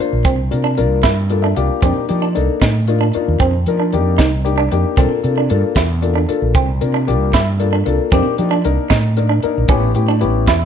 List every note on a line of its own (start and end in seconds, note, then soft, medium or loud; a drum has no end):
0.00 0.30 A#3 medium
0.00 0.31 D4 medium
0.00 0.31 F4 medium
0.00 0.31 C5 medium
0.13 0.24 A#1 medium
0.25 0.49 C2 medium
0.25 0.38 C4 medium
0.25 kick loud
0.25 closed hi-hat medium
0.51 0.80 C3 medium
0.51 0.67 A#3 medium
0.51 0.67 D4 medium
0.51 0.67 F4 medium
0.51 0.67 A#4 medium
0.51 closed hi-hat medium
0.64 0.77 D4 medium
0.77 1.02 C2 medium
0.77 1.10 A#3 medium
0.77 1.10 D4 medium
0.77 1.10 F4 medium
0.77 1.10 A#4 medium
0.77 closed hi-hat medium
1.03 1.52 G2 medium
1.03 1.17 E4 medium
1.03 kick medium
1.03 snare loud
1.03 closed hi-hat medium
1.30 1.46 A#3 medium
1.30 1.46 D4 medium
1.30 1.46 F4 medium
1.30 1.46 A4 medium
1.30 1.42 D5 medium
1.30 closed hi-hat medium
1.42 1.57 D4 medium
1.42 1.55 E5 medium
1.56 1.69 C2 medium
1.56 1.82 A#3 medium
1.56 1.81 D4 medium
1.56 1.83 F4 medium
1.56 1.81 G4 medium
1.56 1.81 F5 medium
1.56 closed hi-hat medium
1.82 1.95 F2 loud
1.82 2.04 A#3 medium
1.82 1.96 C4 medium
1.82 2.04 D4 medium
1.82 2.04 D#4 medium
1.82 2.04 G4 medium
1.82 kick loud
1.82 closed hi-hat medium
1.97 muted fretless electric bass stroke soft
2.09 2.34 F3 loud
2.09 2.25 A#3 medium
2.09 2.25 D4 medium
2.09 2.25 D#4 medium
2.09 2.25 G4 medium
2.09 closed hi-hat medium
2.22 2.35 D4 medium
2.35 2.48 C2 medium
2.35 2.67 A#3 medium
2.35 2.67 D4 medium
2.35 2.67 D#4 medium
2.35 2.67 A4 medium
2.35 closed hi-hat medium
2.62 3.10 A2 medium
2.62 2.75 D#4 medium
2.62 kick medium
2.62 snare loud
2.62 closed hi-hat medium
2.87 3.04 A#3 medium
2.87 3.04 D4 medium
2.87 3.04 D#4 medium
2.87 3.04 F4 medium
2.87 closed hi-hat medium
3.01 3.14 D4 medium
3.13 3.46 A#3 medium
3.13 3.46 D4 medium
3.13 3.46 D#4 medium
3.13 3.46 F4 medium
3.13 muted fretless electric bass stroke soft
3.13 closed hi-hat medium
3.28 3.39 D#2 medium
3.40 3.64 F2 loud
3.40 3.53 C4 medium
3.40 kick loud
3.40 closed hi-hat medium
3.66 3.95 F3 medium
3.66 3.83 A#3 medium
3.66 3.83 D4 medium
3.66 3.83 D#4 medium
3.66 3.83 A#4 medium
3.66 closed hi-hat medium
3.80 3.93 D4 medium
3.92 4.17 F2 medium
3.92 4.25 A#3 medium
3.92 4.25 D4 medium
3.92 4.25 D#4 medium
3.92 4.25 G4 medium
3.92 closed hi-hat soft
4.18 4.68 C2 medium
4.18 4.32 D#4 medium
4.18 kick medium
4.18 snare loud
4.18 closed hi-hat medium
4.44 4.61 A#3 medium
4.44 4.61 D4 medium
4.44 4.61 D#4 medium
4.44 4.61 G4 medium
4.44 closed hi-hat soft
4.58 4.71 D4 medium
4.71 4.84 F2 medium
4.71 4.96 A#3 medium
4.71 4.96 D4 medium
4.71 4.98 D#4 medium
4.71 4.98 G4 medium
4.71 closed hi-hat medium
4.97 5.10 C2 loud
4.97 5.18 A#3 medium
4.97 5.11 C4 medium
4.97 5.18 D4 medium
4.97 5.18 F4 medium
4.97 5.18 A4 medium
4.97 kick loud
4.97 closed hi-hat medium
5.23 5.48 C3 medium
5.23 5.40 A#3 medium
5.23 5.40 D4 medium
5.23 5.40 F4 medium
5.23 5.40 A4 medium
5.23 closed hi-hat medium
5.38 5.51 D4 medium
5.50 5.63 G2 medium
5.50 5.82 A#3 medium
5.50 5.82 D4 medium
5.50 5.82 F4 medium
5.50 5.82 A4 medium
5.50 closed hi-hat medium
5.76 6.25 E2 medium
5.76 5.90 E4 medium
5.76 kick medium
5.76 snare loud
5.76 closed hi-hat medium
6.02 6.18 A#3 medium
6.02 6.18 D4 medium
6.02 6.18 F4 medium
6.02 6.18 A4 medium
6.02 closed hi-hat medium
6.15 6.29 D4 medium
6.28 6.60 A#3 medium
6.28 6.60 D4 medium
6.28 6.60 F4 medium
6.28 6.60 A4 medium
6.28 muted fretless electric bass stroke soft
6.28 closed hi-hat medium
6.42 6.54 A#1 medium
6.55 6.79 C2 loud
6.55 6.68 C4 medium
6.55 kick loud
6.55 closed hi-hat medium
6.81 7.10 C3 medium
6.81 6.97 A#3 medium
6.81 6.97 D4 medium
6.81 6.97 F4 medium
6.81 6.97 A#4 medium
6.81 closed hi-hat medium
6.94 7.07 D4 medium
7.07 7.32 C2 loud
7.07 7.39 A#3 medium
7.07 7.39 D4 medium
7.07 7.39 F4 medium
7.07 7.39 G4 medium
7.07 closed hi-hat medium
7.33 7.82 G2 medium
7.33 7.47 E4 medium
7.33 kick medium
7.33 snare loud
7.33 closed hi-hat medium
7.60 7.76 A#3 medium
7.60 7.76 D4 medium
7.60 7.76 F4 medium
7.60 7.76 A4 medium
7.60 closed hi-hat medium
7.73 7.86 D4 medium
7.85 7.98 C2 medium
7.85 8.11 A#3 medium
7.85 8.11 D4 medium
7.85 8.12 F4 medium
7.85 8.12 A4 medium
7.85 closed hi-hat medium
8.12 8.24 F2 loud
8.12 8.33 A#3 medium
8.12 8.25 C4 medium
8.12 8.33 D4 medium
8.12 8.33 D#4 medium
8.12 8.33 G4 loud
8.12 kick loud
8.12 closed hi-hat medium
8.26 muted fretless electric bass stroke soft
8.38 8.63 F3 medium
8.38 8.54 A#3 medium
8.38 8.54 D4 medium
8.38 8.54 D#4 medium
8.38 8.54 G4 medium
8.38 closed hi-hat medium
8.51 8.64 D4 medium
8.64 8.77 C2 medium
8.64 8.96 A#3 medium
8.64 8.96 D4 medium
8.64 8.96 D#4 medium
8.64 8.96 A#4 medium
8.64 closed hi-hat medium
8.90 9.39 A2 medium
8.90 9.03 D#4 medium
8.90 kick medium
8.90 snare loud
8.90 closed hi-hat medium
9.17 9.33 A#3 medium
9.17 9.33 D4 medium
9.17 9.33 D#4 medium
9.17 9.33 A#4 medium
9.17 closed hi-hat medium
9.29 9.43 D4 medium
9.43 9.70 A#3 medium
9.43 9.70 D4 medium
9.43 9.70 D#4 medium
9.43 9.69 A#4 medium
9.43 muted fretless electric bass stroke soft
9.43 closed hi-hat medium
9.58 9.68 A#1 medium
9.68 9.93 A1 medium
9.68 9.90 B3 medium
9.68 9.90 C#4 medium
9.68 9.83 C#4 medium
9.68 9.90 E4 medium
9.68 9.90 G4 medium
9.68 kick loud
9.68 closed hi-hat medium
9.94 10.24 A2 medium
9.94 10.11 B3 medium
9.94 10.11 C#4 medium
9.94 10.11 E4 medium
9.94 10.11 G4 medium
9.94 closed hi-hat medium
10.08 10.22 D4 medium
10.21 10.46 A1 medium
10.21 10.53 B3 medium
10.21 10.53 C#4 medium
10.21 10.53 E4 medium
10.21 10.53 G4 medium
10.21 closed hi-hat medium
10.47 10.65 E2 medium
10.47 10.61 E4 medium
10.47 kick medium
10.47 snare loud
10.47 closed hi-hat medium